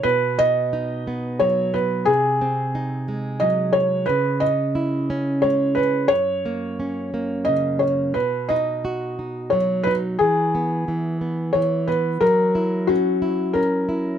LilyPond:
<<
  \new Staff \with { instrumentName = "Felt piano" } { \time 3/4 \key b \major \tempo 4 = 89 b'8 dis''4. cis''8 b'8 | gis'2 dis''8 cis''8 | b'8 dis''4. cis''8 b'8 | cis''2 dis''8 cis''8 |
b'8 dis''4. cis''8 b'8 | gis'2 cis''8 b'8 | ais'4 fis'4 ais'4 | }
  \new Staff \with { instrumentName = "Nylon-string guitar" } { \time 3/4 \key b \major b,8 b8 dis'8 b8 fis8 b8 | bis,8 bis8 dis'8 gis8 fis4 | cis8 cis'8 e'8 cis'8 gis8 cis'8 | fis,8 ais8 cis'8 ais8 cis8 ais8 |
b,8 dis'8 fis'8 dis'8 fis8 dis'8 | e8 b8 e8 b8 e8 b8 | fis8 e'8 cis'8 e'8 cis'8 e'8 | }
>>